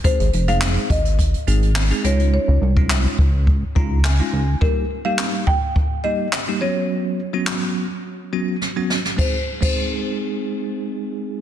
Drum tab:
RD |----------------|----------------|----------------|----------------|
HH |xxxxxxxxxxxxxxxx|----------------|----------------|----------------|
CP |----x-------x---|----x-------x---|----x-------x---|----x-----------|
SD |----o-------o---|----o-------o---|----o-------o---|----o-------o-oo|
BD |o-----o-o-------|---o--o-o-o-----|o-----o-o-------|----------------|

RD |x--x------------|
HH |----------------|
CP |----------------|
SD |----------------|
BD |o--o------------|